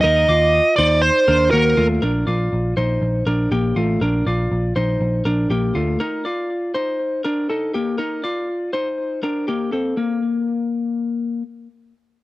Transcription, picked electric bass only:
0.04 D#2
0.29 D#2
0.78 D#2
1.28 D#2
1.53 D#2
1.77 D#2
2.02 A#1
2.27 A#1
2.52 A#1
2.77 A#1
3.02 A#1
3.26 A#1
3.51 A#1
3.76 A1
4.01 A#1
4.26 A#1
4.51 A#1
4.76 A#1
5.00 A#1
5.25 A#1
5.50 A#1
5.75 D2

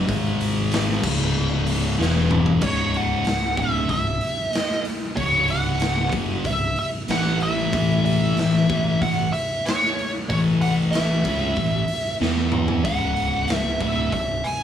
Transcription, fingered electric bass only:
0.09 G#1
1.04 C#1
1.99 E1
2.62 C#1
3.26 C#1
3.58 D1
3.89 C#1
5.17 C#1
6.13 F#1
6.45 C#1
7.09 A1
7.73 A1
8.37 A1
8.70 A1
9.01 A1
10.30 A1
11.25 C#2
11.57 A1
12.20 E2
12.85 C#1
13.49 C#1
13.81 D1
14.13 C#1

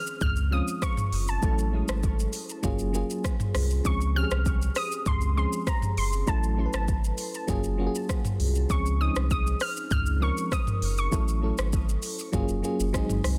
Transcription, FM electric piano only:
Already playing: D#3 F3 G#3 C4 C#4 G#4
0.51 F3 G#3 C4 C#4 F4
1.41 F#3 A3 C#4 E4 A4
1.72 F#3 G#3 A3 C#4 E4
2.63 F#3 A#3 C#4 F4 G#4
2.93 F#3 A#3 C#4 F4 G#4
3.84 F3 G#3 C4 C#4 G#4
4.14 F3 G#3 C4 C#4 G4
4.23 G#4
5.35 F3 G#3 C4 C#4 G#4
6.26 F#3 A3 C#4 E4 A4
6.57 F#3 A3 C#4 E4 A4
6.66 B4
7.47 F#3 A#3 C#4 F4 G#4
7.78 F#3 A#3 C#4 F4 F#4
7.87 G#4
8.69 F3 G#3 C4 C#4 G#4
8.99 F3 G#3 C4 C#4 D#4
10.20 F3 G#3 C4 C#4 A#4
11.11 F#3 A3 C#4 E4 A4
11.41 F#3 A3 C#4 E4 A4
12.32 F#3 A#3 C#4 F4 G#4
12.63 F#3 A#3 C#4 F4 G#4
12.93 F#3 G#3 C4 D#4 G#4

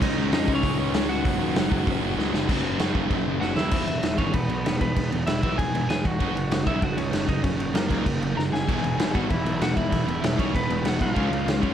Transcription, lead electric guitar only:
0.03 D#4 D#5
0.33 D#4 D#5
0.55 C#4 C#5
0.79 C#4 C#5
1.09 F#4 F#5
3.41 F#4 F#5
3.56 E4 E5
4.18 C#4 C#5
4.33 B3 B4
4.81 B3 B4
5.27 E4 E5
5.43 E4 E5
5.58 G#4 G#5
5.89 G#4 G#5
6.06 F#4 F#5
6.67 E4 E5
6.83 F#4 F#5
6.97 C#4 C#5
7.29 D#4 D#5
7.43 C#4 C#5
7.74 A#3 A#4
8.37 A#4 A#5
8.53 G#4 G#5
9.15 F#4 F#5
9.31 E4 E5
9.62 F#4 F#5
9.76 E4 E5
10.39 C#4 C#5
10.54 B3 B4
10.86 F#4 F#5
11.01 F4 F5
11.63 C#4 C#5

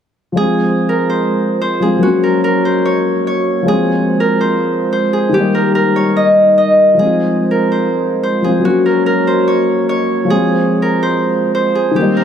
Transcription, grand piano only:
0.32 F3 G#3
0.39 C4 F4
1.80 F3 G#3 C4
1.85 F4
1.97 F#3 A#3
2.04 C#4 F#4
3.62 F3 G#3
3.70 C4 F4
5.29 D#3 G3
5.36 A#3 D#4
6.94 F3 G#3
7.01 C4 F4
8.42 F3 G#3 C4
8.47 F4
8.59 F#3 A#3
8.66 C#4 F#4
10.24 F3 G#3
10.32 C4 F4
11.91 D#3 G3
11.98 A#3 D#4

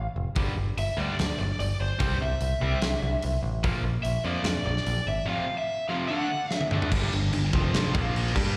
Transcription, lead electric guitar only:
0.79 E5
0.99 D5
1.40 D5
1.60 D5
1.81 C5
2.22 E5
4.03 E5
4.24 D5
4.46 D5
4.66 D5
5.08 E5
5.28 F5
5.58 E5
5.88 F5
6.08 F#5
6.53 E5

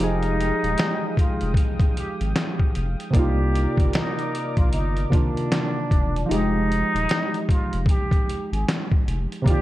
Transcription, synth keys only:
Already playing: F3 D#4
0.01 G4 G#4
3.10 C3 A#3
3.14 D#4 D5
3.19 F4
5.10 C3 D#3 A#3 D4
5.14 F4
6.26 F3 D#4
6.31 G#3 G4
9.42 C3 A#3
9.46 D#3 D5
9.50 F4

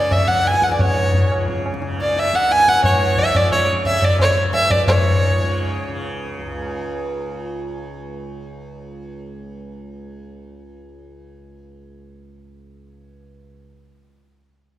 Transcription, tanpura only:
Already playing: C#2 G#2 C#3
0.26 C#2
0.77 G#2
1.31 C#3
1.81 C#3
2.33 C#2
2.82 G#2
3.35 C#3
3.84 C#3
4.36 C#2
4.87 G#2
5.38 C#3
5.89 C#3
6.38 C#2

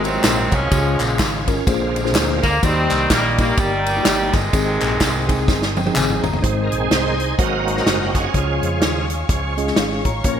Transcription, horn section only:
Already playing: C3
0.04 D#3 F#3 C4
0.52 F3 G#3 C#4
2.43 A#3
2.63 D#3 G3 C4
3.10 A#3
3.39 A#3
3.59 A#2 D#3 G3
4.34 C3 D#3 G#3

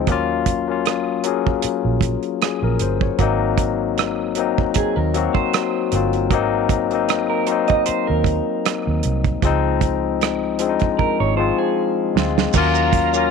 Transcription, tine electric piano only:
0.07 F#3 A#3 C#4
0.12 F4
0.67 F#3 A#3 C#4
0.71 F4
1.24 F#3 A#3 C#4 G#4
2.43 G#4
2.64 A#4
2.82 C5
3.02 C#5
3.19 F#3 A#3 C4 D#4
4.36 F#3 A#3 C4 D#4
5.14 F#3 A#3 C4 F#4
5.92 F#3 A#3 C4
5.96 F4
6.31 F#3 A#3 C4 D#4
6.91 F#3 A#3 C4
6.95 D#4
7.47 F#3 A#3 C4
7.52 D#4
9.43 F3 G#3 C4 D#4
10.59 F3 G#3 C4
10.63 D4
10.69 D#4
11.37 F3 G#3 C4 F4
12.15 F3 G#3 C4 F4
12.54 F#3 A#3 C#4 F4
13.14 F#3 A#3 C#4 F4

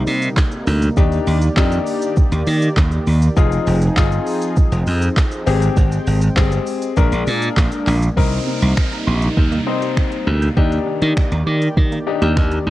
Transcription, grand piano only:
0.97 D4 D#4 G4
1.57 D4 D#4 G4
3.37 D#4 F4 G#4
3.97 D#4 F4 G#4
5.47 C4 G4 G#4
6.37 C4 G4 G#4
6.97 D4 G#4 A#4
8.17 C4 D#4 A#4
9.67 C4 D#4 C5
10.57 D4 D#4 G4
12.07 D4 D#4 G4

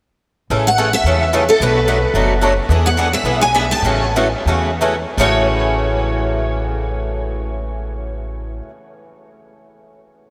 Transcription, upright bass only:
0.50 A1
1.04 E2
1.60 B1
2.14 F#1
2.69 E2
3.24 B1
3.82 A1
4.46 E2
5.17 A1

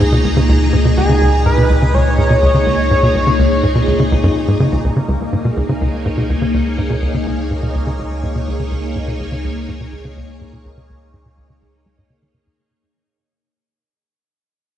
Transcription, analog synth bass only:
0.00 G#2
0.12 B2
0.25 C#2
0.37 C#3
0.49 C#2
0.73 G#2
0.85 B2
0.97 C#2
1.09 C#3
1.21 C#2
1.46 G#2
1.58 B2
1.70 C#2
1.82 C#3
1.94 C#2
2.18 G#2
2.30 B2
2.43 C#2
2.55 C#3
2.67 C#2
2.91 G#2
3.03 B2
3.15 C#2
3.27 C#3
3.39 C#2
3.63 G#2
3.75 B2
3.87 C#2
4.00 C#3
4.12 C#2
4.24 F#2
4.48 G#2
4.60 C#3
4.72 C#2
4.84 C#2
4.97 C#3
5.09 C#2
5.33 G#2
5.45 B2
5.57 C#2
5.69 C#3
5.81 C#2
6.06 G#2
6.18 B2
6.30 C#2
6.42 C#3
6.54 C#2
6.78 G#2
6.90 B2
7.02 C#2
7.14 C#3
7.26 C#2
7.51 G#2
7.63 B2
7.75 C#2
7.87 C#3
7.99 C#2
8.23 G#2
8.35 B2
8.47 C#2
8.60 C#3
8.71 C#2
8.96 G#2
9.08 B2
9.20 C#2
9.32 C#3
9.44 C#2
9.68 G#2
9.81 B2
9.93 C#2
10.05 C#3
10.17 C#2
10.41 G#2
10.53 B2
10.65 C#2
10.77 C#3
10.90 C#2
11.14 G#2
11.26 B2
11.38 C#2
11.50 C#3
11.62 C#2
11.86 G#3
11.98 G#2
12.10 C#3
12.22 D#3
12.34 C#3
12.47 F#2

